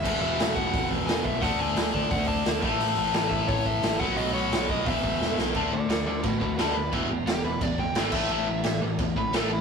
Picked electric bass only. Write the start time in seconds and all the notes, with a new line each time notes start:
0.04 E1
0.22 E1
0.38 E1
0.57 E1
0.74 E1
1.07 E1
1.25 B1
1.43 D2
1.59 D2
1.76 D2
1.94 D2
2.11 D2
2.45 D2
2.63 A1
2.80 A1
2.97 A1
3.14 A1
3.31 A1
3.49 A1
3.82 A1
4.00 B1
4.16 B1
4.33 B1
4.52 B1
4.70 B1
4.86 E1
5.20 E1
5.37 B1
5.55 D2
5.72 D2
5.89 D2
6.05 D2
6.24 A2
6.41 D2
6.58 D2
6.93 E1
7.09 E1
7.26 E1
7.43 E1
7.61 E1
7.96 G#1
8.12 A1
8.30 A1
8.48 A1
8.65 A1
8.82 A1
8.99 E2
9.16 A1
9.34 A1